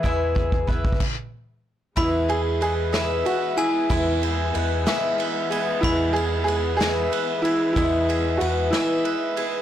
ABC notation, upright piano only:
X:1
M:6/8
L:1/8
Q:3/8=62
K:E
V:1 name="Upright piano"
z6 | E G G2 F E | E4- E z | E G G G2 E |
E2 F E2 z |]